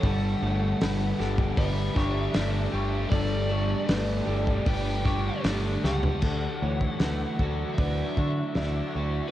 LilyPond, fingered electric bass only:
\new Staff \with { instrumentName = "Fingered electric bass" } { \clef bass \time 4/4 \key d \major \tempo 4 = 77 g,,8 g,,8 g,,8 g,,8 g,,8 g,,8 g,,8 g,,8 | g,,4 g,,8 g,,8 g,,4 g,,8 cis,8 | d,8 d,8 d,8 d,8 d,8 d8 d,8 d,8 | }